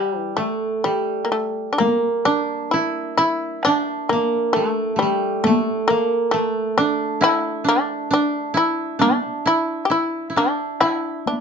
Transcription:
0.00 0.19 G3 medium
0.00 0.44 G3 medium
0.19 0.34 E3 medium
0.37 0.81 A3 medium
0.37 1.86 A3 medium
0.84 1.22 G3 medium
0.84 3.95 G3 medium
1.25 1.31 A#3 medium
1.32 1.70 A3 medium
1.73 1.80 D4 medium
1.78 2.22 A#3 medium
1.78 4.12 A#3 medium
1.78 taiko high medium
2.25 2.68 D4 medium
2.25 3.66 D4 medium
2.71 3.14 E4 medium
2.71 3.18 E4 medium
3.17 3.61 E4 medium
3.17 5.45 E4 medium
3.63 4.07 D4 medium
3.63 6.09 D4 medium
3.63 taiko rim medium
4.09 4.51 A#3 medium
4.09 4.62 A#3 medium
4.09 taiko high soft
4.53 4.95 A3 medium
4.53 4.96 A3 medium
4.96 5.41 G3 medium
4.96 5.46 A3 medium
5.02 5.53 G3 medium
5.44 5.86 A3 medium
5.44 5.96 A3 medium
5.44 taiko high medium
5.88 6.30 A#3 medium
5.88 6.40 A#3 medium
6.31 6.74 A3 medium
6.31 9.22 A3 medium
6.78 7.19 D4 medium
6.78 7.64 D4 medium
7.21 8.54 E4 medium
7.21 7.65 E4 loud
7.21 taiko rim medium
7.64 8.10 D4 medium
7.69 8.10 D4 medium
8.11 8.99 D4 medium
8.11 8.54 D4 medium
8.54 9.45 E4 medium
8.54 8.99 E4 medium
8.99 10.36 D4 medium
8.99 9.44 D4 medium
8.99 taiko high medium
9.46 9.89 E4 medium
9.46 9.83 E4 medium
9.85 9.91 G4 medium
9.90 10.29 E4 medium
9.90 10.33 E4 medium
10.30 10.81 E4 soft
10.36 11.40 D4 medium
10.36 10.79 D4 medium
10.80 11.24 E4 medium
10.80 11.40 E4 medium
10.80 taiko rim medium
11.26 11.40 D4 medium
11.26 taiko high soft

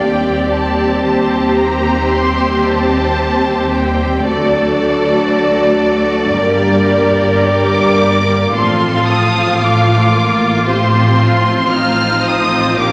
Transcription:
0.00 4.22 D#2 soft
0.00 2.13 G3 soft
0.00 4.26 C4 soft
0.00 2.09 C4 medium
0.00 4.22 G4 soft
0.00 4.27 G4 soft
0.00 1.03 D5 soft
0.00 0.52 G5 medium
0.53 1.57 A5 medium
1.08 4.27 C5 soft
1.59 2.13 A#5 medium
2.12 4.22 G3 soft
2.12 4.22 C4 soft
2.12 2.66 C6 medium
2.66 3.73 A5 medium
3.73 4.26 G5 medium
4.25 6.32 D2 medium
4.25 6.32 D2 soft
4.25 6.32 F#3 medium
4.25 6.32 A3 medium
4.25 6.33 D4 medium
4.25 6.32 F#4 soft
4.25 6.32 A4 medium
4.25 8.51 D5 medium
4.25 7.44 D5 medium
6.35 8.56 G1 medium
6.35 8.55 G2 medium
6.35 8.55 G3 medium
6.35 7.47 A#3 medium
6.35 7.45 D4 medium
6.35 8.55 G4 medium
6.35 8.56 A#4 soft
7.47 8.54 A#3 medium
7.47 8.54 D4 medium
7.47 8.55 D6 medium
8.55 12.74 A1 medium
8.55 12.74 A2 medium
8.55 10.50 F3 medium
8.55 9.57 C4 medium
8.55 10.63 F4 medium
8.55 10.50 F4 medium
8.55 9.58 A4 medium
8.55 10.63 F5 medium
8.55 9.07 C6 medium
9.08 9.61 D#6 medium
9.60 10.14 A3 medium
9.60 11.71 F4 medium
9.60 10.67 D6 medium
10.14 10.67 A#3 medium
10.66 11.70 F3 medium
10.66 11.69 C4 medium
10.66 11.69 F4 medium
10.66 11.19 G4 medium
10.66 11.70 C5 soft
10.66 11.69 C6 medium
11.19 11.71 F4 medium
11.70 12.76 F3 medium
11.70 12.76 C4 medium
11.70 12.76 D#4 medium
11.70 12.76 F4 medium
11.70 12.77 F4 medium
11.70 12.77 C5 medium
11.70 12.25 F6 medium
12.24 12.78 D#6 medium
12.77 12.92 A#1 medium
12.77 12.92 A#2 medium
12.77 12.92 F3 medium
12.77 12.92 A#3 medium
12.77 12.92 D4 medium
12.77 12.92 F4 medium
12.77 12.92 G4 medium
12.77 12.92 F5 medium
12.77 12.92 D6 medium

